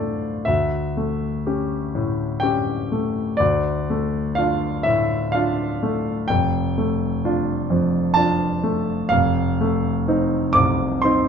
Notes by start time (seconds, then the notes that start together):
Already playing: D2 A2 A3 D4 F4 C5 D5
0.45 D2 E5
0.97 A3
1.47 C#4 G4
1.95 A2
2.40 C#4 G4 G5
2.92 A3
3.37 D2 D5
3.90 A3
4.35 D4 F4 F5
4.83 A2 E5
5.32 D4 F4 F5
5.83 A3
6.28 F1 G5
6.78 A3
7.25 D4 F4
7.70 F2
8.14 D4 F4 A5
8.63 A3
9.09 F1 F5
9.61 A3
10.08 C4 D#4
10.53 C2 D6
11.02 C4 D#4 C6